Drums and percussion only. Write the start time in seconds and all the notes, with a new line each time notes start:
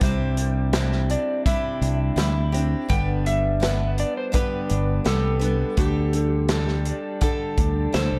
0.01 kick, closed hi-hat
0.37 closed hi-hat
0.73 snare, closed hi-hat
0.92 snare
1.10 closed hi-hat
1.46 kick, closed hi-hat
1.82 closed hi-hat
2.18 snare, closed hi-hat
2.54 closed hi-hat
2.90 kick, closed hi-hat
3.26 closed hi-hat
3.63 snare, closed hi-hat
3.98 closed hi-hat
4.34 kick, closed hi-hat
4.70 closed hi-hat
5.06 snare, closed hi-hat
5.41 closed hi-hat
5.77 kick, closed hi-hat
6.13 closed hi-hat
6.49 snare, closed hi-hat
6.68 snare
6.85 closed hi-hat
7.21 kick, closed hi-hat
7.58 kick, closed hi-hat
7.94 snare, closed hi-hat